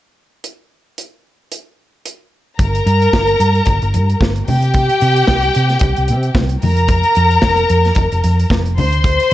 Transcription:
0.44 closed hi-hat medium
0.98 closed hi-hat medium
1.52 closed hi-hat medium
2.06 closed hi-hat medium
2.59 2.79 G1 medium
2.59 4.18 A#4 medium
2.59 4.17 A#5 medium
2.59 kick loud
2.59 closed hi-hat medium
2.59 muted conga soft
2.75 closed hi-hat soft
2.86 3.06 G2 loud
2.86 closed hi-hat medium
3.02 closed hi-hat soft
3.13 3.33 G1 medium
3.13 kick medium
3.13 snare loud
3.13 high conga medium
3.27 closed hi-hat soft
3.40 3.60 G2 medium
3.40 closed hi-hat medium
3.55 closed hi-hat soft
3.66 3.78 G1 medium
3.66 kick medium
3.66 closed hi-hat medium
3.66 muted conga medium
3.82 3.96 G1 medium
3.82 closed hi-hat soft
3.94 4.14 G2 medium
3.94 closed hi-hat medium
3.94 muted conga soft
4.10 closed hi-hat soft
4.21 4.41 G1 medium
4.21 kick loud
4.21 snare loud
4.21 high conga medium
4.36 closed hi-hat soft
4.47 4.88 C3 medium
4.47 6.32 G4 medium
4.47 6.32 G5 loud
4.47 open hi-hat soft
4.47 high conga medium
4.62 closed hi-hat soft
4.74 kick loud
4.74 closed hi-hat medium
4.74 muted conga soft
4.89 closed hi-hat soft
5.01 5.22 C3 loud
5.01 closed hi-hat medium
5.16 closed hi-hat soft
5.27 5.48 C2 medium
5.27 kick loud
5.27 snare loud
5.27 high conga medium
5.42 closed hi-hat soft
5.55 5.76 C3 medium
5.55 closed hi-hat medium
5.69 snare soft
5.69 closed hi-hat soft
5.79 5.93 C2 loud
5.79 kick loud
5.79 closed hi-hat medium
5.79 muted conga medium
5.96 6.11 C2 medium
5.96 closed hi-hat soft
6.08 6.29 C3 medium
6.08 closed hi-hat medium
6.23 closed hi-hat soft
6.35 6.55 C2 loud
6.35 kick loud
6.35 snare loud
6.35 high conga medium
6.49 closed hi-hat soft
6.62 7.03 F2 medium
6.62 8.47 A#4 medium
6.62 8.47 A#5 medium
6.62 open hi-hat medium
6.62 high conga medium
6.77 closed hi-hat soft
6.88 kick loud
6.88 closed hi-hat medium
6.88 muted conga soft
7.03 closed hi-hat soft
7.15 7.37 F2 loud
7.15 closed hi-hat medium
7.31 closed hi-hat soft
7.42 7.63 F1 medium
7.42 kick medium
7.42 snare loud
7.42 high conga medium
7.57 closed hi-hat soft
7.70 7.90 F2 medium
7.70 closed hi-hat medium
7.85 snare soft
7.85 closed hi-hat soft
7.95 8.08 F1 loud
7.95 kick loud
7.95 closed hi-hat medium
7.95 muted conga medium
8.12 8.21 F1 medium
8.12 closed hi-hat soft
8.24 8.44 F2 loud
8.24 closed hi-hat medium
8.24 muted conga soft
8.39 closed hi-hat soft
8.50 8.79 F1 loud
8.50 kick loud
8.50 snare loud
8.50 high conga medium
8.66 closed hi-hat soft
8.78 9.17 D2 medium
8.78 9.34 C5 medium
8.78 9.34 C6 loud
8.78 open hi-hat medium
8.78 high conga medium
8.93 closed hi-hat soft
9.04 kick loud
9.04 closed hi-hat medium
9.04 muted conga soft
9.20 closed hi-hat soft

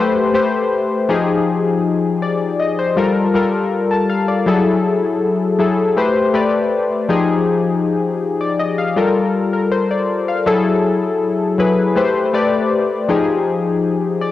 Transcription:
0.00 0.26 A3 medium
0.00 0.26 G4 medium
0.00 0.27 B4 medium
0.00 0.27 C5 medium
0.00 0.13 E5 medium
0.34 1.09 A3 medium
0.34 1.08 G4 medium
0.34 1.09 B4 medium
0.34 1.09 C5 medium
1.09 2.29 F3 medium
1.09 2.29 D#4 medium
1.09 2.29 G4 medium
1.09 2.29 G#4 medium
2.22 2.57 D5 medium
2.60 2.77 D#5 medium
2.79 3.14 C5 medium
2.96 3.26 G3 medium
2.96 3.26 F4 medium
2.96 3.27 A4 medium
2.96 3.27 A#4 medium
3.34 4.46 G3 medium
3.34 4.47 F4 medium
3.34 4.47 A4 medium
3.34 4.47 A#4 medium
3.91 4.08 A5 medium
4.09 4.27 F5 medium
4.28 4.63 D5 medium
4.46 5.36 F#3 medium
4.46 5.37 E4 medium
4.46 5.37 G#4 medium
4.46 5.37 A4 medium
5.59 5.89 F#3 medium
5.59 5.89 E4 medium
5.59 5.89 G#4 medium
5.59 5.89 A4 medium
5.97 6.26 A3 medium
5.97 6.27 G4 medium
5.97 6.27 B4 medium
5.97 6.27 C5 medium
6.34 7.09 A3 medium
6.34 7.09 G4 medium
6.34 7.09 B4 medium
6.34 7.09 D5 medium
7.09 8.29 F3 medium
7.09 8.29 D#4 medium
7.09 8.29 G4 medium
7.09 8.29 G#4 medium
8.41 8.58 D5 medium
8.59 8.77 D#5 medium
8.78 9.13 F5 medium
8.96 9.26 G3 medium
8.96 9.26 F4 medium
8.96 9.27 A4 medium
8.96 9.27 A#4 medium
9.53 9.71 A#4 medium
9.72 9.89 C5 medium
9.91 10.26 D5 medium
10.28 10.64 F5 medium
10.46 11.36 F#3 medium
10.46 11.36 E4 medium
10.46 11.37 G#4 medium
10.46 11.37 A4 loud
11.58 11.88 F#3 medium
11.58 11.89 E4 medium
11.58 11.89 G#4 medium
11.58 11.89 B4 medium
11.96 12.26 A3 medium
11.96 12.26 G4 medium
11.96 12.26 B4 medium
11.96 12.27 C5 medium
12.33 13.08 A3 medium
12.33 13.08 G4 medium
12.33 13.09 B4 medium
12.33 13.09 D5 medium
13.08 14.29 F3 medium
13.08 14.29 D#4 medium
13.08 14.29 G4 medium
13.08 14.29 G#4 medium
14.21 14.32 D5 medium

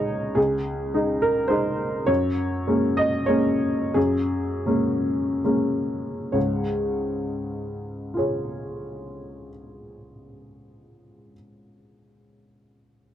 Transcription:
0.00 0.36 C#2 soft
0.00 0.40 G#3 soft
0.00 0.40 D#4 soft
0.00 0.39 C#5 medium
0.00 0.40 D#5 medium
0.35 0.92 C#2 soft
0.35 0.93 G#4 soft
0.94 1.47 G#3 soft
0.94 1.47 D#4 soft
1.22 1.51 A#4 medium
1.48 2.04 G#3 soft
1.48 2.04 D#4 soft
1.48 2.07 C5 medium
2.06 2.66 F#2 soft
2.06 2.98 C#5 medium
2.67 3.26 G#3 soft
2.67 3.26 A#3 soft
2.67 3.26 C#4 soft
2.97 3.29 D#5 medium
3.26 3.90 G#3 soft
3.26 3.90 A#3 soft
3.26 3.91 C#4 soft
3.26 3.94 C#5 medium
3.94 4.64 F#2 soft
3.94 4.65 G#4 medium
4.66 5.41 G#3 soft
4.66 5.41 A#3 soft
4.66 5.41 C#4 soft
5.44 6.31 G#3 soft
5.44 6.31 A#3 soft
5.44 6.31 C#4 soft
6.32 9.50 C#2 soft
6.32 9.51 G#2 soft
6.32 8.17 C#5 soft
8.14 11.30 F4 soft
8.14 11.33 G#4 soft
8.18 11.35 C#5 soft

